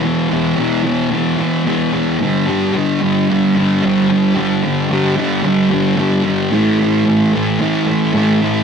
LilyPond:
\new Staff \with { instrumentName = "Distorted electric guitar" } { \clef bass \time 4/4 \key g \lydian \tempo 4 = 111 <e, b, e>8 <b, e>8 <e, b, e>8 <e, b, e>8 <e, b, e>8 <b, e>8 <e, b, e>8 <b, e>8 | <g, d g>8 <d g>8 <g, d g>8 <g, d g>8 <g, d g>8 <d g>8 <g, d g>8 <d g>8 | <g, d g>8 <d g>8 <g, d g>8 <g, d g>8 <g, d g>8 <d g>8 <g, d g>8 <d g>8 | <a, e a>8 <e a>8 <a, e a>8 <a, e a>8 <a, e a>8 <e a>8 <a, e a>8 <e a>8 | }